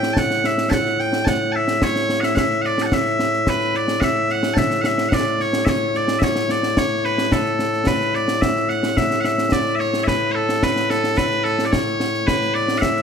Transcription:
0.00 13.02 A2 medium
0.00 0.13 G5 loud
0.00 snare medium
0.13 0.18 A5 loud
0.13 concert bass drum medium
0.13 snare loud
0.18 0.46 F#5 loud
0.30 snare medium
0.44 0.70 E5 medium
0.44 snare medium
0.58 snare medium
0.70 1.00 F#5 medium
0.70 0.73 A5 medium
0.70 concert bass drum medium
0.70 snare loud
0.85 snare soft
0.99 1.25 G5 loud
0.99 snare soft
1.13 snare medium
1.25 1.52 F#5 loud
1.25 1.28 A5 loud
1.25 concert bass drum medium
1.25 snare loud
1.52 1.83 E5 loud
1.52 1.55 A5 loud
1.68 snare medium
1.82 2.20 C#5 loud
1.82 concert bass drum medium
1.82 snare loud
1.96 snare medium
2.09 snare medium
2.20 2.24 F#5 medium
2.20 snare medium
2.24 2.35 E5 medium
2.35 2.62 E5 medium
2.35 2.38 F#5 medium
2.35 concert bass drum medium
2.35 snare loud
2.51 snare soft
2.62 2.66 F#5 medium
2.62 snare soft
2.66 2.82 D5 medium
2.78 2.86 A5 medium
2.78 snare medium
2.86 2.93 F#5 medium
2.92 3.49 E5 loud
2.92 concert bass drum medium
2.92 snare medium
3.06 snare soft
3.19 snare medium
3.33 snare soft
3.47 3.76 B4 medium
3.47 concert bass drum medium
3.47 snare medium
3.60 snare soft
3.74 4.00 D5 medium
3.74 snare soft
3.88 snare medium
4.00 4.31 E5 loud
4.00 4.04 F#5 loud
4.00 concert bass drum medium
4.00 snare medium
4.29 4.54 F#5 loud
4.29 snare soft
4.43 snare medium
4.54 4.81 E5 medium
4.54 4.58 A5 medium
4.54 concert bass drum medium
4.54 snare loud
4.71 snare medium
4.81 4.86 F#5 medium
4.81 snare medium
4.86 5.09 E5 medium
4.98 snare medium
5.09 5.13 F#5 medium
5.09 concert bass drum medium
5.09 snare loud
5.13 5.41 D5 medium
5.40 5.65 C#5 medium
5.40 snare soft
5.53 snare medium
5.65 5.96 C#5 medium
5.65 5.69 E5 medium
5.65 concert bass drum medium
5.65 snare loud
5.94 6.19 D5 medium
5.94 snare soft
6.08 snare medium
6.19 6.23 E5 medium
6.19 concert bass drum medium
6.19 snare loud
6.23 6.50 C#5 medium
6.36 snare medium
6.49 6.78 D5 medium
6.49 snare medium
6.63 snare medium
6.77 7.05 C#5 medium
6.77 concert bass drum medium
6.77 snare loud
7.05 7.32 B4 medium
7.05 snare soft
7.18 snare medium
7.32 7.87 A4 medium
7.32 concert bass drum medium
7.32 snare loud
7.46 snare soft
7.59 snare medium
7.73 snare soft
7.87 8.15 B4 medium
7.87 concert bass drum medium
7.87 snare loud
8.00 snare soft
8.14 8.41 D5 medium
8.14 snare soft
8.28 snare medium
8.41 8.69 E5 medium
8.41 concert bass drum medium
8.41 snare loud
8.56 snare soft
8.69 8.97 F#5 medium
8.69 snare soft
8.83 snare medium
8.97 9.20 E5 loud
8.97 concert bass drum medium
8.97 snare medium
9.11 snare medium
9.20 9.25 F#5 medium
9.20 snare medium
9.25 9.52 E5 medium
9.38 snare medium
9.52 9.75 D5 medium
9.52 concert bass drum medium
9.52 snare loud
9.66 snare soft
9.75 9.80 E5 medium
9.80 10.04 C#5 medium
9.80 snare soft
9.94 snare medium
10.04 10.32 B4 medium
10.04 10.08 E5 medium
10.04 concert bass drum medium
10.04 snare medium
10.32 10.63 A4 medium
10.32 10.35 C#5 medium
10.49 snare medium
10.63 10.90 B4 medium
10.63 concert bass drum soft
10.63 snare medium
10.76 snare medium
10.90 11.17 A4 medium
10.90 snare medium
11.04 snare medium
11.17 11.44 B4 medium
11.17 concert bass drum medium
11.17 snare loud
11.31 snare soft
11.44 11.65 A4 medium
11.44 snare soft
11.59 snare medium
11.65 11.72 D5 medium
11.72 12.27 C#5 medium
11.72 concert bass drum medium
11.72 snare loud
11.86 snare soft
12.00 snare medium
12.14 snare soft
12.27 12.54 B4 loud
12.27 concert bass drum medium
12.27 snare loud
12.41 snare soft
12.54 12.78 D5 loud
12.54 snare soft
12.68 snare medium
12.78 13.02 E5 loud
12.78 12.81 F#5 loud
12.82 concert bass drum medium
12.82 snare loud
12.96 snare soft

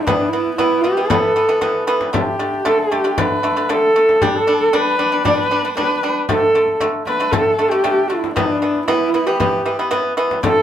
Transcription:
0.04 0.28 E3 medium
0.04 0.28 B3 medium
0.04 0.30 D4 medium
0.04 frame drum medium
0.28 0.55 E4 medium
0.33 0.54 E3 medium
0.33 0.54 B3 medium
0.47 frame drum soft
0.55 0.79 E3 medium
0.55 0.80 B3 medium
0.55 0.83 E4 medium
0.55 frame drum medium
0.81 0.95 E3 medium
0.81 0.95 B3 medium
0.81 1.09 G4 medium
0.81 frame drum soft
0.97 1.08 E3 medium
0.97 1.08 B3 medium
1.08 1.31 E3 medium
1.08 1.31 B3 medium
1.08 1.87 A4 medium
1.08 frame drum medium
1.23 frame drum soft
1.36 1.47 E3 medium
1.36 1.47 B3 medium
1.49 1.60 E3 medium
1.49 1.60 B3 medium
1.61 1.83 E3 medium
1.61 1.83 B3 medium
1.61 frame drum medium
1.87 2.09 E3 medium
1.87 2.09 B3 loud
2.01 frame drum medium
2.13 2.35 D3 medium
2.13 2.35 A3 medium
2.13 2.67 G4 medium
2.13 frame drum medium
2.39 2.61 D3 medium
2.39 2.61 A3 medium
2.53 frame drum soft
2.65 2.87 D3 medium
2.65 2.87 A3 loud
2.65 2.80 A4 medium
2.65 frame drum medium
2.78 3.20 G4 medium
2.92 3.02 D3 medium
2.92 3.03 A3 medium
2.92 frame drum soft
3.04 3.15 D3 medium
3.04 3.15 A3 medium
3.18 3.39 D3 medium
3.18 3.39 A3 medium
3.18 3.72 B4 medium
3.18 frame drum medium
3.31 frame drum soft
3.43 3.54 D3 medium
3.43 3.54 A3 medium
3.56 3.67 D3 medium
3.56 3.67 A3 medium
3.69 3.91 D3 medium
3.69 3.91 A3 medium
3.69 4.23 A4 medium
3.69 frame drum medium
3.96 4.17 D3 medium
3.96 4.17 A3 medium
4.09 frame drum soft
4.22 4.43 G3 medium
4.22 4.43 D4 medium
4.22 4.37 G4 medium
4.22 frame drum medium
4.36 4.76 A4 medium
4.47 4.68 G3 medium
4.47 4.69 D4 medium
4.61 frame drum soft
4.73 4.94 G3 medium
4.73 4.94 D4 loud
4.73 5.26 B4 medium
4.73 frame drum soft
4.99 5.10 G3 medium
4.99 5.10 D4 medium
4.99 frame drum soft
5.12 5.23 G3 medium
5.12 5.23 D4 medium
5.25 5.46 G3 medium
5.25 5.46 D4 medium
5.25 5.38 D5 medium
5.25 frame drum medium
5.38 5.75 B4 medium
5.38 frame drum soft
5.51 5.62 G3 medium
5.51 5.62 D4 medium
5.65 5.75 G3 medium
5.65 5.75 D4 medium
5.77 5.98 G3 medium
5.77 5.98 D4 medium
5.77 6.14 B4 medium
5.77 frame drum medium
6.03 6.24 G3 medium
6.03 6.24 D4 medium
6.29 6.50 D3 medium
6.29 6.50 A3 medium
6.29 6.79 A4 medium
6.29 frame drum medium
6.55 6.76 D3 medium
6.55 6.76 A3 medium
6.68 frame drum soft
6.80 7.02 D3 medium
6.80 7.02 A3 medium
6.80 frame drum soft
7.06 7.18 D3 medium
7.06 7.18 A3 medium
7.06 7.33 B4 medium
7.06 frame drum soft
7.20 7.30 D3 medium
7.20 7.31 A3 medium
7.31 7.54 D3 medium
7.31 7.54 A3 loud
7.31 7.71 A4 medium
7.31 frame drum medium
7.46 frame drum soft
7.59 7.69 D3 medium
7.59 7.69 A3 medium
7.70 7.82 D3 medium
7.70 7.82 A3 medium
7.70 8.09 G4 medium
7.84 8.05 D3 medium
7.84 8.05 A3 medium
7.84 frame drum medium
8.08 8.31 D3 medium
8.08 8.31 A3 medium
8.08 8.34 E4 medium
8.24 frame drum soft
8.35 8.57 E3 medium
8.35 8.57 B3 loud
8.35 8.84 D4 medium
8.35 frame drum medium
8.62 8.83 E3 medium
8.62 8.83 B3 medium
8.76 frame drum soft
8.86 9.09 E3 medium
8.86 9.09 B3 loud
8.86 9.28 E4 medium
8.86 frame drum medium
9.14 9.25 E3 medium
9.14 9.25 B3 medium
9.14 frame drum soft
9.26 9.37 E3 medium
9.26 9.38 B3 medium
9.26 9.79 G4 medium
9.40 9.61 E3 medium
9.40 9.61 B3 medium
9.40 frame drum medium
9.54 frame drum soft
9.66 9.76 E3 medium
9.66 9.76 B3 medium
9.79 9.89 E3 medium
9.79 9.90 B3 medium
9.91 10.12 E3 medium
9.91 10.12 B3 loud
9.91 frame drum medium
10.17 10.38 E3 medium
10.17 10.38 B3 loud
10.31 frame drum soft
10.43 10.62 D3 medium
10.43 10.62 A3 loud
10.43 10.62 A4 medium
10.43 frame drum medium

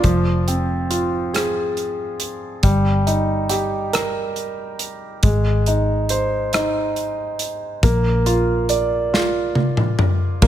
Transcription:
0.04 2.60 F1 medium
0.04 2.60 F3 medium
0.04 kick medium
0.04 closed hi-hat medium
0.48 2.17 C4 soft
0.48 closed hi-hat soft
0.90 2.60 F4 soft
0.90 closed hi-hat medium
1.34 2.60 G#4 soft
1.34 cross-stick medium
1.34 closed hi-hat medium
1.77 closed hi-hat soft
2.20 closed hi-hat medium
2.63 5.19 G1 medium
2.63 5.19 G3 medium
2.63 kick medium
2.63 closed hi-hat medium
3.07 4.76 D#4 soft
3.07 closed hi-hat soft
3.49 5.19 G4 soft
3.49 cross-stick soft
3.49 closed hi-hat medium
3.93 5.19 A#4 soft
3.93 cross-stick medium
3.93 closed hi-hat medium
4.36 closed hi-hat soft
4.79 closed hi-hat medium
5.23 7.79 G#1 medium
5.23 7.79 G#3 medium
5.23 kick medium
5.23 closed hi-hat medium
5.66 6.52 D#4 soft
5.66 closed hi-hat medium
6.09 7.79 C5 soft
6.09 closed hi-hat medium
6.53 7.79 D#4 soft
6.53 cross-stick medium
6.53 closed hi-hat medium
6.96 closed hi-hat soft
7.39 closed hi-hat medium
7.83 10.38 A#1 medium
7.83 10.39 A#3 medium
7.83 kick loud
7.83 closed hi-hat medium
8.26 9.12 F4 medium
8.26 closed hi-hat medium
8.69 10.38 D5 soft
8.69 closed hi-hat medium
9.13 10.39 F4 medium
9.13 snare medium
9.55 high tom medium
9.77 mid tom medium
9.99 mid tom medium
10.42 10.47 A#1 loud
10.42 10.47 A#3 medium
10.42 10.47 D4 medium
10.42 10.47 F4 medium
10.42 kick loud
10.42 crash loud

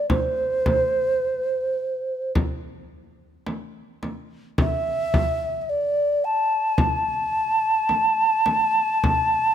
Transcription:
0.09 2.31 C5 medium
0.09 frame drum medium
0.66 frame drum medium
2.35 frame drum medium
3.47 frame drum soft
4.03 frame drum soft
4.58 5.61 E5 medium
4.58 frame drum medium
5.14 frame drum medium
5.61 5.70 E5 medium
5.69 6.25 D5 medium
6.24 9.55 A5 medium
6.78 frame drum medium
7.89 frame drum soft
8.46 frame drum soft
9.04 frame drum medium

